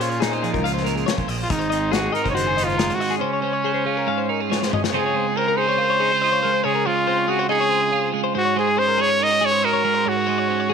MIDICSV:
0, 0, Header, 1, 6, 480
1, 0, Start_track
1, 0, Key_signature, -5, "major"
1, 0, Tempo, 427960
1, 1691, Time_signature, 4, 2, 24, 8
1, 12043, End_track
2, 0, Start_track
2, 0, Title_t, "Clean electric guitar"
2, 0, Program_c, 0, 27
2, 107, Note_on_c, 0, 73, 59
2, 227, Note_on_c, 0, 68, 71
2, 237, Note_off_c, 0, 73, 0
2, 354, Note_on_c, 0, 72, 69
2, 357, Note_off_c, 0, 68, 0
2, 474, Note_on_c, 0, 68, 70
2, 481, Note_off_c, 0, 72, 0
2, 595, Note_off_c, 0, 68, 0
2, 600, Note_on_c, 0, 70, 64
2, 718, Note_on_c, 0, 77, 82
2, 724, Note_off_c, 0, 70, 0
2, 826, Note_off_c, 0, 77, 0
2, 830, Note_on_c, 0, 72, 71
2, 943, Note_on_c, 0, 70, 67
2, 960, Note_off_c, 0, 72, 0
2, 1074, Note_off_c, 0, 70, 0
2, 1074, Note_on_c, 0, 68, 68
2, 1191, Note_on_c, 0, 73, 66
2, 1202, Note_off_c, 0, 68, 0
2, 1310, Note_off_c, 0, 73, 0
2, 1310, Note_on_c, 0, 72, 60
2, 1437, Note_off_c, 0, 72, 0
2, 1437, Note_on_c, 0, 75, 76
2, 1547, Note_off_c, 0, 75, 0
2, 1547, Note_on_c, 0, 72, 65
2, 1665, Note_off_c, 0, 72, 0
2, 1665, Note_on_c, 0, 70, 86
2, 1784, Note_off_c, 0, 70, 0
2, 1784, Note_on_c, 0, 72, 68
2, 1903, Note_off_c, 0, 72, 0
2, 1907, Note_on_c, 0, 75, 70
2, 2015, Note_off_c, 0, 75, 0
2, 2015, Note_on_c, 0, 72, 58
2, 2148, Note_on_c, 0, 68, 71
2, 2154, Note_off_c, 0, 72, 0
2, 2252, Note_off_c, 0, 68, 0
2, 2265, Note_on_c, 0, 68, 62
2, 2382, Note_on_c, 0, 75, 69
2, 2399, Note_off_c, 0, 68, 0
2, 2507, Note_off_c, 0, 75, 0
2, 2511, Note_on_c, 0, 72, 60
2, 2632, Note_on_c, 0, 66, 78
2, 2643, Note_off_c, 0, 72, 0
2, 2763, Note_off_c, 0, 66, 0
2, 2773, Note_on_c, 0, 68, 65
2, 2884, Note_on_c, 0, 75, 74
2, 2894, Note_off_c, 0, 68, 0
2, 3007, Note_off_c, 0, 75, 0
2, 3007, Note_on_c, 0, 72, 63
2, 3116, Note_off_c, 0, 72, 0
2, 3121, Note_on_c, 0, 70, 73
2, 3250, Note_off_c, 0, 70, 0
2, 3250, Note_on_c, 0, 72, 67
2, 3369, Note_off_c, 0, 72, 0
2, 3369, Note_on_c, 0, 75, 73
2, 3483, Note_on_c, 0, 68, 57
2, 3492, Note_off_c, 0, 75, 0
2, 3602, Note_on_c, 0, 72, 89
2, 3610, Note_off_c, 0, 68, 0
2, 3729, Note_off_c, 0, 72, 0
2, 3738, Note_on_c, 0, 73, 72
2, 3831, Note_off_c, 0, 73, 0
2, 3836, Note_on_c, 0, 72, 61
2, 3959, Note_off_c, 0, 72, 0
2, 3959, Note_on_c, 0, 73, 62
2, 4087, Note_on_c, 0, 68, 74
2, 4088, Note_off_c, 0, 73, 0
2, 4192, Note_off_c, 0, 68, 0
2, 4197, Note_on_c, 0, 72, 63
2, 4324, Note_off_c, 0, 72, 0
2, 4324, Note_on_c, 0, 68, 73
2, 4455, Note_off_c, 0, 68, 0
2, 4455, Note_on_c, 0, 70, 64
2, 4574, Note_on_c, 0, 77, 81
2, 4576, Note_off_c, 0, 70, 0
2, 4685, Note_on_c, 0, 72, 63
2, 4695, Note_off_c, 0, 77, 0
2, 4823, Note_off_c, 0, 72, 0
2, 4823, Note_on_c, 0, 70, 73
2, 4949, Note_off_c, 0, 70, 0
2, 4949, Note_on_c, 0, 68, 65
2, 5063, Note_off_c, 0, 68, 0
2, 5064, Note_on_c, 0, 73, 67
2, 5194, Note_off_c, 0, 73, 0
2, 5194, Note_on_c, 0, 72, 71
2, 5305, Note_off_c, 0, 72, 0
2, 5313, Note_on_c, 0, 75, 78
2, 5423, Note_off_c, 0, 75, 0
2, 5427, Note_on_c, 0, 73, 59
2, 5538, Note_off_c, 0, 73, 0
2, 5543, Note_on_c, 0, 72, 85
2, 5659, Note_off_c, 0, 72, 0
2, 5674, Note_on_c, 0, 73, 73
2, 5791, Note_off_c, 0, 73, 0
2, 5791, Note_on_c, 0, 72, 78
2, 5915, Note_off_c, 0, 72, 0
2, 5915, Note_on_c, 0, 68, 64
2, 6027, Note_off_c, 0, 68, 0
2, 6027, Note_on_c, 0, 72, 76
2, 6141, Note_off_c, 0, 72, 0
2, 6151, Note_on_c, 0, 70, 71
2, 6262, Note_off_c, 0, 70, 0
2, 6262, Note_on_c, 0, 68, 81
2, 6375, Note_off_c, 0, 68, 0
2, 6379, Note_on_c, 0, 73, 69
2, 6505, Note_off_c, 0, 73, 0
2, 6505, Note_on_c, 0, 70, 86
2, 6612, Note_off_c, 0, 70, 0
2, 6616, Note_on_c, 0, 73, 66
2, 6729, Note_on_c, 0, 68, 74
2, 6735, Note_off_c, 0, 73, 0
2, 6852, Note_off_c, 0, 68, 0
2, 6860, Note_on_c, 0, 72, 76
2, 6973, Note_off_c, 0, 72, 0
2, 6973, Note_on_c, 0, 75, 77
2, 7087, Note_off_c, 0, 75, 0
2, 7091, Note_on_c, 0, 73, 73
2, 7204, Note_off_c, 0, 73, 0
2, 7208, Note_on_c, 0, 70, 78
2, 7329, Note_off_c, 0, 70, 0
2, 7334, Note_on_c, 0, 72, 61
2, 7440, Note_off_c, 0, 72, 0
2, 7445, Note_on_c, 0, 73, 89
2, 7563, Note_off_c, 0, 73, 0
2, 7567, Note_on_c, 0, 70, 77
2, 7686, Note_off_c, 0, 70, 0
2, 7686, Note_on_c, 0, 72, 75
2, 7803, Note_off_c, 0, 72, 0
2, 7803, Note_on_c, 0, 73, 67
2, 7927, Note_off_c, 0, 73, 0
2, 7935, Note_on_c, 0, 72, 75
2, 8054, Note_off_c, 0, 72, 0
2, 8054, Note_on_c, 0, 73, 72
2, 8160, Note_off_c, 0, 73, 0
2, 8164, Note_on_c, 0, 68, 74
2, 8290, Note_off_c, 0, 68, 0
2, 8290, Note_on_c, 0, 72, 75
2, 8398, Note_off_c, 0, 72, 0
2, 8403, Note_on_c, 0, 75, 83
2, 8524, Note_off_c, 0, 75, 0
2, 8529, Note_on_c, 0, 73, 73
2, 8634, Note_off_c, 0, 73, 0
2, 8634, Note_on_c, 0, 72, 80
2, 8761, Note_off_c, 0, 72, 0
2, 8761, Note_on_c, 0, 75, 78
2, 8874, Note_off_c, 0, 75, 0
2, 8874, Note_on_c, 0, 73, 76
2, 8996, Note_off_c, 0, 73, 0
2, 8996, Note_on_c, 0, 72, 81
2, 9117, Note_off_c, 0, 72, 0
2, 9117, Note_on_c, 0, 68, 74
2, 9234, Note_off_c, 0, 68, 0
2, 9239, Note_on_c, 0, 72, 68
2, 9351, Note_off_c, 0, 72, 0
2, 9365, Note_on_c, 0, 72, 98
2, 9474, Note_off_c, 0, 72, 0
2, 9478, Note_on_c, 0, 73, 74
2, 9603, Note_off_c, 0, 73, 0
2, 9611, Note_on_c, 0, 72, 72
2, 9725, Note_on_c, 0, 68, 69
2, 9729, Note_off_c, 0, 72, 0
2, 9836, Note_on_c, 0, 72, 75
2, 9846, Note_off_c, 0, 68, 0
2, 9953, Note_off_c, 0, 72, 0
2, 9957, Note_on_c, 0, 70, 70
2, 10070, Note_on_c, 0, 68, 88
2, 10082, Note_off_c, 0, 70, 0
2, 10195, Note_on_c, 0, 73, 71
2, 10199, Note_off_c, 0, 68, 0
2, 10316, Note_off_c, 0, 73, 0
2, 10316, Note_on_c, 0, 70, 85
2, 10429, Note_off_c, 0, 70, 0
2, 10429, Note_on_c, 0, 73, 73
2, 10552, Note_off_c, 0, 73, 0
2, 10556, Note_on_c, 0, 68, 81
2, 10672, Note_off_c, 0, 68, 0
2, 10672, Note_on_c, 0, 72, 73
2, 10796, Note_off_c, 0, 72, 0
2, 10796, Note_on_c, 0, 75, 73
2, 10913, Note_off_c, 0, 75, 0
2, 10917, Note_on_c, 0, 73, 75
2, 11041, Note_off_c, 0, 73, 0
2, 11045, Note_on_c, 0, 70, 78
2, 11148, Note_off_c, 0, 70, 0
2, 11148, Note_on_c, 0, 72, 69
2, 11276, Note_off_c, 0, 72, 0
2, 11276, Note_on_c, 0, 73, 89
2, 11405, Note_off_c, 0, 73, 0
2, 11405, Note_on_c, 0, 70, 78
2, 11516, Note_off_c, 0, 70, 0
2, 11516, Note_on_c, 0, 72, 79
2, 11644, Note_off_c, 0, 72, 0
2, 11644, Note_on_c, 0, 73, 67
2, 11757, Note_off_c, 0, 73, 0
2, 11757, Note_on_c, 0, 72, 68
2, 11888, Note_off_c, 0, 72, 0
2, 11888, Note_on_c, 0, 73, 66
2, 11998, Note_on_c, 0, 68, 82
2, 12007, Note_off_c, 0, 73, 0
2, 12043, Note_off_c, 0, 68, 0
2, 12043, End_track
3, 0, Start_track
3, 0, Title_t, "Trumpet"
3, 0, Program_c, 1, 56
3, 16, Note_on_c, 1, 65, 79
3, 249, Note_on_c, 1, 63, 68
3, 266, Note_off_c, 1, 65, 0
3, 729, Note_off_c, 1, 63, 0
3, 1598, Note_on_c, 1, 65, 68
3, 1689, Note_on_c, 1, 63, 78
3, 1706, Note_off_c, 1, 65, 0
3, 2157, Note_on_c, 1, 66, 75
3, 2174, Note_off_c, 1, 63, 0
3, 2393, Note_on_c, 1, 70, 84
3, 2410, Note_off_c, 1, 66, 0
3, 2565, Note_off_c, 1, 70, 0
3, 2575, Note_on_c, 1, 73, 74
3, 2630, Note_on_c, 1, 72, 95
3, 2646, Note_off_c, 1, 73, 0
3, 2963, Note_on_c, 1, 65, 85
3, 2980, Note_off_c, 1, 72, 0
3, 3304, Note_on_c, 1, 66, 85
3, 3321, Note_off_c, 1, 65, 0
3, 3557, Note_off_c, 1, 66, 0
3, 3564, Note_on_c, 1, 61, 81
3, 5226, Note_off_c, 1, 61, 0
3, 5555, Note_on_c, 1, 68, 84
3, 6022, Note_on_c, 1, 70, 79
3, 6038, Note_off_c, 1, 68, 0
3, 6245, Note_on_c, 1, 72, 93
3, 6262, Note_off_c, 1, 70, 0
3, 7454, Note_on_c, 1, 68, 89
3, 7471, Note_off_c, 1, 72, 0
3, 7696, Note_on_c, 1, 65, 91
3, 7713, Note_off_c, 1, 68, 0
3, 8181, Note_on_c, 1, 66, 81
3, 8198, Note_off_c, 1, 65, 0
3, 8398, Note_off_c, 1, 66, 0
3, 8405, Note_on_c, 1, 68, 98
3, 9081, Note_off_c, 1, 68, 0
3, 9389, Note_on_c, 1, 66, 94
3, 9602, Note_off_c, 1, 66, 0
3, 9635, Note_on_c, 1, 68, 86
3, 9857, Note_on_c, 1, 72, 98
3, 9874, Note_off_c, 1, 68, 0
3, 10110, Note_on_c, 1, 73, 101
3, 10127, Note_off_c, 1, 72, 0
3, 10355, Note_on_c, 1, 75, 106
3, 10372, Note_off_c, 1, 73, 0
3, 10600, Note_on_c, 1, 73, 102
3, 10617, Note_off_c, 1, 75, 0
3, 10822, Note_on_c, 1, 70, 105
3, 10839, Note_off_c, 1, 73, 0
3, 11312, Note_on_c, 1, 66, 91
3, 11329, Note_off_c, 1, 70, 0
3, 12043, Note_off_c, 1, 66, 0
3, 12043, End_track
4, 0, Start_track
4, 0, Title_t, "Clean electric guitar"
4, 0, Program_c, 2, 27
4, 0, Note_on_c, 2, 46, 62
4, 9, Note_on_c, 2, 61, 56
4, 252, Note_on_c, 2, 63, 52
4, 371, Note_off_c, 2, 63, 0
4, 371, Note_on_c, 2, 65, 46
4, 483, Note_on_c, 2, 53, 57
4, 718, Note_off_c, 2, 65, 0
4, 732, Note_on_c, 2, 65, 61
4, 969, Note_on_c, 2, 58, 55
4, 1206, Note_off_c, 2, 61, 0
4, 1220, Note_on_c, 2, 61, 58
4, 1418, Note_off_c, 2, 46, 0
4, 1420, Note_off_c, 2, 53, 0
4, 1422, Note_off_c, 2, 58, 0
4, 1423, Note_off_c, 2, 65, 0
4, 1427, Note_off_c, 2, 61, 0
4, 1462, Note_on_c, 2, 46, 63
4, 1668, Note_off_c, 2, 46, 0
4, 1695, Note_on_c, 2, 44, 72
4, 1938, Note_on_c, 2, 60, 59
4, 2178, Note_on_c, 2, 63, 51
4, 2408, Note_off_c, 2, 63, 0
4, 2422, Note_on_c, 2, 63, 59
4, 2642, Note_on_c, 2, 51, 54
4, 2894, Note_off_c, 2, 63, 0
4, 2907, Note_on_c, 2, 63, 53
4, 3134, Note_on_c, 2, 56, 70
4, 3378, Note_off_c, 2, 60, 0
4, 3383, Note_on_c, 2, 60, 58
4, 3581, Note_off_c, 2, 51, 0
4, 3604, Note_on_c, 2, 49, 66
4, 3617, Note_off_c, 2, 44, 0
4, 3622, Note_off_c, 2, 63, 0
4, 3638, Note_off_c, 2, 60, 0
4, 3852, Note_on_c, 2, 61, 59
4, 4103, Note_on_c, 2, 72, 54
4, 4334, Note_on_c, 2, 65, 57
4, 4562, Note_on_c, 2, 44, 61
4, 4571, Note_off_c, 2, 49, 0
4, 4808, Note_off_c, 2, 65, 0
4, 4813, Note_on_c, 2, 63, 57
4, 4940, Note_off_c, 2, 63, 0
4, 4940, Note_on_c, 2, 65, 46
4, 5041, Note_off_c, 2, 56, 0
4, 5045, Note_on_c, 2, 56, 58
4, 5272, Note_off_c, 2, 61, 0
4, 5285, Note_on_c, 2, 61, 55
4, 5502, Note_off_c, 2, 56, 0
4, 5502, Note_off_c, 2, 61, 0
4, 5511, Note_off_c, 2, 72, 0
4, 5525, Note_on_c, 2, 49, 76
4, 5529, Note_off_c, 2, 44, 0
4, 5535, Note_off_c, 2, 65, 0
4, 5537, Note_on_c, 2, 56, 54
4, 5542, Note_on_c, 2, 60, 64
4, 5549, Note_on_c, 2, 65, 62
4, 5759, Note_off_c, 2, 56, 0
4, 5763, Note_on_c, 2, 56, 66
4, 6004, Note_off_c, 2, 60, 0
4, 6008, Note_on_c, 2, 60, 53
4, 6246, Note_off_c, 2, 65, 0
4, 6251, Note_on_c, 2, 63, 58
4, 6366, Note_off_c, 2, 63, 0
4, 6366, Note_on_c, 2, 65, 49
4, 6468, Note_off_c, 2, 65, 0
4, 6482, Note_on_c, 2, 65, 64
4, 6728, Note_off_c, 2, 65, 0
4, 6736, Note_on_c, 2, 63, 62
4, 6866, Note_off_c, 2, 63, 0
4, 6866, Note_on_c, 2, 65, 50
4, 6980, Note_off_c, 2, 65, 0
4, 6995, Note_on_c, 2, 65, 61
4, 7225, Note_off_c, 2, 56, 0
4, 7230, Note_on_c, 2, 56, 57
4, 7420, Note_off_c, 2, 60, 0
4, 7435, Note_off_c, 2, 65, 0
4, 7445, Note_off_c, 2, 49, 0
4, 7458, Note_on_c, 2, 49, 78
4, 7699, Note_off_c, 2, 56, 0
4, 7703, Note_on_c, 2, 56, 73
4, 7950, Note_on_c, 2, 60, 58
4, 8174, Note_on_c, 2, 65, 61
4, 8405, Note_off_c, 2, 65, 0
4, 8409, Note_on_c, 2, 63, 65
4, 8536, Note_off_c, 2, 63, 0
4, 8536, Note_on_c, 2, 65, 53
4, 8629, Note_off_c, 2, 65, 0
4, 8642, Note_on_c, 2, 65, 57
4, 8875, Note_off_c, 2, 65, 0
4, 8888, Note_on_c, 2, 65, 64
4, 9120, Note_off_c, 2, 56, 0
4, 9125, Note_on_c, 2, 56, 66
4, 9339, Note_off_c, 2, 65, 0
4, 9349, Note_off_c, 2, 60, 0
4, 9358, Note_on_c, 2, 44, 76
4, 9371, Note_off_c, 2, 49, 0
4, 9596, Note_off_c, 2, 56, 0
4, 9601, Note_on_c, 2, 56, 72
4, 9851, Note_on_c, 2, 61, 60
4, 10089, Note_on_c, 2, 68, 71
4, 10198, Note_off_c, 2, 68, 0
4, 10198, Note_on_c, 2, 70, 60
4, 10331, Note_on_c, 2, 63, 63
4, 10444, Note_off_c, 2, 63, 0
4, 10444, Note_on_c, 2, 66, 50
4, 10562, Note_off_c, 2, 70, 0
4, 10568, Note_on_c, 2, 68, 56
4, 10678, Note_off_c, 2, 68, 0
4, 10678, Note_on_c, 2, 70, 55
4, 10805, Note_off_c, 2, 66, 0
4, 10820, Note_on_c, 2, 66, 65
4, 11040, Note_off_c, 2, 56, 0
4, 11044, Note_on_c, 2, 56, 67
4, 11264, Note_off_c, 2, 66, 0
4, 11265, Note_off_c, 2, 44, 0
4, 11278, Note_on_c, 2, 44, 75
4, 11282, Note_off_c, 2, 70, 0
4, 11528, Note_off_c, 2, 56, 0
4, 11533, Note_on_c, 2, 56, 64
4, 11774, Note_off_c, 2, 61, 0
4, 11778, Note_on_c, 2, 61, 59
4, 12013, Note_off_c, 2, 61, 0
4, 12043, Note_off_c, 2, 44, 0
4, 12043, Note_off_c, 2, 56, 0
4, 12043, End_track
5, 0, Start_track
5, 0, Title_t, "Fingered electric bass"
5, 0, Program_c, 3, 33
5, 0, Note_on_c, 3, 46, 77
5, 608, Note_on_c, 3, 37, 66
5, 625, Note_off_c, 3, 46, 0
5, 1151, Note_off_c, 3, 37, 0
5, 1321, Note_on_c, 3, 34, 74
5, 1415, Note_off_c, 3, 34, 0
5, 1430, Note_on_c, 3, 34, 74
5, 1619, Note_off_c, 3, 34, 0
5, 1687, Note_on_c, 3, 32, 89
5, 2322, Note_off_c, 3, 32, 0
5, 2524, Note_on_c, 3, 30, 79
5, 3251, Note_off_c, 3, 30, 0
5, 12043, End_track
6, 0, Start_track
6, 0, Title_t, "Drums"
6, 11, Note_on_c, 9, 42, 60
6, 123, Note_off_c, 9, 42, 0
6, 129, Note_on_c, 9, 42, 37
6, 242, Note_off_c, 9, 42, 0
6, 244, Note_on_c, 9, 42, 72
6, 249, Note_on_c, 9, 38, 100
6, 356, Note_off_c, 9, 42, 0
6, 361, Note_off_c, 9, 38, 0
6, 370, Note_on_c, 9, 42, 31
6, 482, Note_off_c, 9, 42, 0
6, 493, Note_on_c, 9, 42, 52
6, 605, Note_off_c, 9, 42, 0
6, 608, Note_on_c, 9, 36, 67
6, 617, Note_on_c, 9, 42, 31
6, 720, Note_off_c, 9, 36, 0
6, 729, Note_off_c, 9, 42, 0
6, 734, Note_on_c, 9, 42, 70
6, 846, Note_off_c, 9, 42, 0
6, 865, Note_on_c, 9, 38, 26
6, 969, Note_on_c, 9, 42, 55
6, 977, Note_off_c, 9, 38, 0
6, 1081, Note_off_c, 9, 42, 0
6, 1093, Note_on_c, 9, 42, 37
6, 1205, Note_off_c, 9, 42, 0
6, 1208, Note_on_c, 9, 42, 71
6, 1213, Note_on_c, 9, 38, 94
6, 1320, Note_off_c, 9, 42, 0
6, 1323, Note_on_c, 9, 42, 31
6, 1324, Note_on_c, 9, 36, 61
6, 1325, Note_off_c, 9, 38, 0
6, 1436, Note_off_c, 9, 36, 0
6, 1436, Note_off_c, 9, 42, 0
6, 1444, Note_on_c, 9, 46, 69
6, 1556, Note_off_c, 9, 46, 0
6, 1683, Note_on_c, 9, 42, 74
6, 1684, Note_on_c, 9, 36, 110
6, 1795, Note_off_c, 9, 42, 0
6, 1796, Note_off_c, 9, 36, 0
6, 1807, Note_on_c, 9, 42, 39
6, 1919, Note_off_c, 9, 42, 0
6, 1928, Note_on_c, 9, 42, 58
6, 2040, Note_off_c, 9, 42, 0
6, 2165, Note_on_c, 9, 42, 74
6, 2169, Note_on_c, 9, 38, 93
6, 2277, Note_off_c, 9, 42, 0
6, 2281, Note_off_c, 9, 38, 0
6, 2412, Note_on_c, 9, 42, 55
6, 2524, Note_off_c, 9, 42, 0
6, 2530, Note_on_c, 9, 36, 67
6, 2536, Note_on_c, 9, 42, 35
6, 2642, Note_off_c, 9, 36, 0
6, 2648, Note_off_c, 9, 42, 0
6, 2656, Note_on_c, 9, 42, 80
6, 2768, Note_off_c, 9, 42, 0
6, 2895, Note_on_c, 9, 42, 65
6, 3007, Note_off_c, 9, 42, 0
6, 3020, Note_on_c, 9, 42, 36
6, 3130, Note_off_c, 9, 42, 0
6, 3130, Note_on_c, 9, 42, 86
6, 3135, Note_on_c, 9, 38, 103
6, 3243, Note_off_c, 9, 42, 0
6, 3247, Note_off_c, 9, 38, 0
6, 3254, Note_on_c, 9, 42, 37
6, 3259, Note_on_c, 9, 38, 31
6, 3366, Note_off_c, 9, 42, 0
6, 3371, Note_off_c, 9, 38, 0
6, 3379, Note_on_c, 9, 46, 67
6, 3491, Note_off_c, 9, 46, 0
6, 3502, Note_on_c, 9, 42, 38
6, 3614, Note_off_c, 9, 42, 0
6, 5070, Note_on_c, 9, 38, 57
6, 5182, Note_off_c, 9, 38, 0
6, 5190, Note_on_c, 9, 38, 54
6, 5302, Note_off_c, 9, 38, 0
6, 5306, Note_on_c, 9, 45, 81
6, 5418, Note_off_c, 9, 45, 0
6, 5429, Note_on_c, 9, 38, 77
6, 5541, Note_off_c, 9, 38, 0
6, 12043, End_track
0, 0, End_of_file